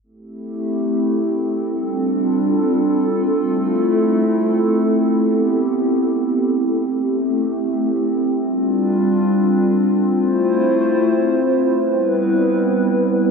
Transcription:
0.03 1.68 A3 medium
0.03 3.33 C4 medium
0.03 1.68 E4 medium
0.03 1.68 G4 medium
0.03 9.99 A4 medium
1.70 3.35 G3 medium
1.70 3.35 D4 medium
1.70 5.00 F4 medium
3.37 5.02 A3 medium
3.37 11.66 C4 medium
3.37 8.33 E4 medium
5.03 6.68 B3 medium
5.03 6.68 G4 medium
6.70 8.35 A3 medium
6.70 8.35 G4 medium
8.37 10.02 G3 medium
8.37 10.02 D4 medium
8.37 10.02 F4 medium
10.03 11.69 A3 medium
10.03 11.69 E4 medium
10.03 11.69 F4 medium
10.03 11.69 C5 medium
11.70 13.31 G3 medium
11.70 13.31 B3 medium
11.70 13.31 C4 medium
11.70 13.31 E4 medium
11.70 13.31 B4 medium

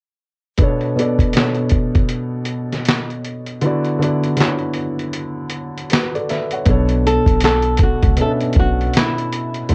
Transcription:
0.58 0.93 B2 medium
0.58 0.93 B3 medium
0.58 0.94 D4 medium
0.58 kick medium
0.58 closed hi-hat medium
0.62 0.95 A4 medium
0.62 0.95 C#5 medium
0.81 closed hi-hat soft
0.96 1.31 B2 medium
0.96 1.31 B3 medium
0.96 1.32 D4 medium
0.96 closed hi-hat medium
1.00 1.33 A4 medium
1.00 1.33 D5 medium
1.19 kick medium
1.19 closed hi-hat soft
1.33 2.73 B2 medium
1.33 2.73 B3 medium
1.33 2.74 D4 medium
1.33 snare medium
1.33 closed hi-hat medium
1.38 2.75 A4 medium
1.38 2.76 C#5 medium
1.38 clap medium
1.54 closed hi-hat soft
1.69 kick medium
1.69 closed hi-hat medium
1.95 kick medium
1.95 closed hi-hat soft
2.09 closed hi-hat medium
2.45 closed hi-hat medium
2.73 snare soft
2.73 closed hi-hat soft
2.85 snare loud
2.85 closed hi-hat medium
2.90 clap medium
3.10 closed hi-hat soft
3.24 closed hi-hat medium
3.46 closed hi-hat soft
3.61 3.97 D3 medium
3.61 3.97 B3 medium
3.61 3.98 E4 medium
3.61 closed hi-hat medium
3.66 3.99 F#4 medium
3.66 3.99 D5 medium
3.84 closed hi-hat soft
3.99 4.34 D3 medium
3.99 4.35 B3 medium
3.99 4.35 E4 medium
3.99 4.36 F#4 medium
3.99 closed hi-hat medium
4.04 4.37 D5 medium
4.24 closed hi-hat soft
4.37 5.76 D3 medium
4.37 5.77 B3 medium
4.37 5.77 E4 medium
4.37 snare loud
4.37 closed hi-hat medium
4.41 5.78 F#4 medium
4.41 5.79 C#5 medium
4.41 clap medium
4.59 closed hi-hat soft
4.74 closed hi-hat medium
4.99 closed hi-hat soft
5.13 closed hi-hat medium
5.50 closed hi-hat medium
5.77 closed hi-hat soft
5.90 6.13 F#4 medium
5.90 6.13 B4 medium
5.90 snare loud
5.90 closed hi-hat medium
5.94 clap medium
6.15 6.29 A4 soft
6.15 6.28 D5 medium
6.15 closed hi-hat soft
6.29 6.51 B4 medium
6.29 6.51 E5 medium
6.29 snare soft
6.29 closed hi-hat medium
6.51 6.69 C#5 soft
6.51 6.88 F#5 medium
6.51 closed hi-hat soft
6.65 7.16 B1 medium
6.65 8.04 B2 medium
6.65 8.05 B3 medium
6.65 8.06 D4 medium
6.65 8.06 A4 medium
6.65 kick loud
6.65 closed hi-hat medium
6.71 8.07 C#5 medium
6.89 closed hi-hat soft
7.07 7.41 A4 medium
7.07 closed hi-hat medium
7.26 7.89 B1 medium
7.26 kick medium
7.26 closed hi-hat soft
7.41 snare medium
7.41 closed hi-hat medium
7.45 7.83 A4 loud
7.45 clap medium
7.63 closed hi-hat soft
7.77 kick medium
7.77 closed hi-hat medium
7.83 8.21 F#4 medium
8.03 8.15 C#2 medium
8.03 kick medium
8.03 closed hi-hat soft
8.17 9.56 B2 medium
8.17 9.57 B3 medium
8.17 8.27 C#4 medium
8.17 closed hi-hat medium
8.21 9.58 A4 medium
8.21 8.31 A4 loud
8.21 9.59 E5 medium
8.26 9.61 D4 medium
8.41 closed hi-hat soft
8.53 8.87 B1 medium
8.53 kick medium
8.53 closed hi-hat medium
8.60 8.97 F#4 medium
8.81 closed hi-hat soft
8.93 snare loud
8.93 closed hi-hat medium
8.98 9.73 E4 medium
8.98 clap medium
9.18 closed hi-hat soft
9.32 closed hi-hat medium
9.54 closed hi-hat soft
9.69 9.75 D2 medium
9.69 9.75 D3 medium
9.69 9.75 A3 medium
9.69 9.75 E4 medium
9.69 closed hi-hat medium

